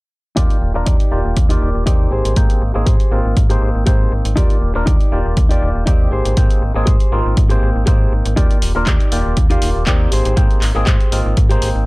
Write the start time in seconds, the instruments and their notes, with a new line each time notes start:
0.36 fm bass D#2, clav A#3 F4 G4 D5, clean electric guitar D#4 G4 D5, kick, closed hi-hat
0.50 closed hi-hat
0.62 fm bass D#1
0.74 fm bass D#1, clav A#3 D4 F4 A#4, muted clean electric guitar stroke
0.86 fm bass D#2, clean electric guitar D#4 G4 D5, kick, closed hi-hat
1.00 closed hi-hat
1.11 fm bass D#1, clav A#3 F4 G4 D5
1.25 fm bass D#1
1.37 fm bass D#2, kick, closed hi-hat
1.49 clav A#3 F4 G4 D5, clean electric guitar D#4 G4 D5, closed hi-hat
1.62 fm bass D#1
1.75 fm bass D#1
1.86 fm bass D#2, clav A#3 C4 D#4 G4, clean electric guitar D#4 G4 D5, kick, closed hi-hat
2.11 fm bass G#1, clean electric guitar G4 G#4 C5
2.25 fm bass G#1, closed hi-hat
2.36 fm bass G#2, clav A#3 C4 D#4 G5, kick, closed hi-hat
2.50 closed hi-hat
2.62 fm bass G#1
2.74 fm bass G#1, clav A#3 C4 D#4 G#4, muted clean electric guitar stroke
2.86 fm bass G#2, clean electric guitar G4 G#4 C5, kick, closed hi-hat
3.00 closed hi-hat
3.11 fm bass G#1, clav A#3 C4 D#4 F4
3.25 fm bass G#1
3.37 fm bass G#2, kick, closed hi-hat
3.50 clav A#3 C4 D#4 G5, clean electric guitar G4 G#4 C5, closed hi-hat
3.62 fm bass G#1
3.75 fm bass G#1
3.86 fm bass G#2, clav A#3 C4 D#4 G5, clean electric guitar G4 G#4 C5, kick, closed hi-hat
4.12 fm bass G#1
4.25 fm bass G#1, closed hi-hat
4.36 fm bass D#2, clav A#3 F4 G4 D5, clean electric guitar D#4 G4 D5, kick, closed hi-hat
4.50 closed hi-hat
4.62 fm bass D#1
4.74 fm bass D#1, clav A#3 D4 F4 A#4, muted clean electric guitar stroke
4.86 fm bass D#2, clean electric guitar D#4 G4 D5, kick, closed hi-hat
5.01 closed hi-hat
5.12 fm bass D#1, clav A#3 F4 G4 D5
5.26 fm bass D#1
5.37 fm bass D#2, kick, closed hi-hat
5.49 clav A#3 F4 G4 D5, clean electric guitar D#4 G4 D5, closed hi-hat
5.62 fm bass D#1
5.75 fm bass D#1
5.86 fm bass D#2, clav A#3 C4 D#4 G4, clean electric guitar D#4 G4 D5, kick, closed hi-hat
6.11 fm bass G#1, clean electric guitar G4 G#4 C5
6.25 fm bass G#1, closed hi-hat
6.37 fm bass G#2, clav A#3 C4 D#4 G5, kick, closed hi-hat
6.50 closed hi-hat
6.62 fm bass G#1
6.74 fm bass G#1, clav A#3 C4 D#4 G#4, muted clean electric guitar stroke
6.86 fm bass G#2, clean electric guitar G4 G#4 C5, kick, closed hi-hat
7.00 closed hi-hat
7.12 fm bass G#1, clav A#3 C4 D#4 F4
7.26 fm bass G#1
7.37 fm bass G#2, kick, closed hi-hat
7.49 clav A#3 C4 D#4 G5, clean electric guitar G4 G#4 C5, closed hi-hat
7.62 fm bass G#1
7.76 fm bass G#1
7.86 fm bass G#2, clav A#3 C4 D#4 G5, clean electric guitar G4 G#4 C5, kick, closed hi-hat
8.12 fm bass G#1
8.26 fm bass G#1, closed hi-hat
8.36 fm bass D#2, clav A#3 F4 G4 D5, clean electric guitar D#4 G4 D5, kick, closed hi-hat
8.51 closed hi-hat
8.62 fm bass D#1, open hi-hat
8.75 fm bass D#1, clav A#3 D4 F4 A#4, muted clean electric guitar stroke
8.86 fm bass D#2, clean electric guitar D#4 G4 D5, kick, clap, closed hi-hat
9.00 closed hi-hat
9.12 fm bass D#1, clav A#3 F4 G4 D5, open hi-hat
9.26 fm bass D#1
9.37 fm bass D#2, kick, closed hi-hat
9.50 clav A#3 F4 G4 D5, clean electric guitar D#4 G4 F5, closed hi-hat
9.62 fm bass D#1, open hi-hat
9.76 fm bass D#1
9.87 fm bass D#2, clav A#3 C4 D#4 G4, clean electric guitar D#4 G4 D5, kick, clap, closed hi-hat
10.11 fm bass G#1, clean electric guitar G4 G#4 C5, open hi-hat
10.25 fm bass G#1, closed hi-hat
10.37 fm bass G#2, clav A#3 C4 D#4 G5, kick, closed hi-hat
10.51 closed hi-hat
10.62 fm bass G#1, clap, open hi-hat
10.75 fm bass G#1, clav A#3 C4 D#4 G#4, muted clean electric guitar stroke
10.86 fm bass G#2, clean electric guitar G4 G#4 C5, kick, clap, closed hi-hat
11.01 closed hi-hat
11.12 fm bass G#1, clav A#3 C4 D#4 F4, open hi-hat
11.26 fm bass G#1
11.37 fm bass G#2, kick, closed hi-hat
11.49 clav A#3 C4 D#4 G5, clean electric guitar G4 G#4 C5, closed hi-hat
11.62 fm bass G#1, open hi-hat
11.75 fm bass G#1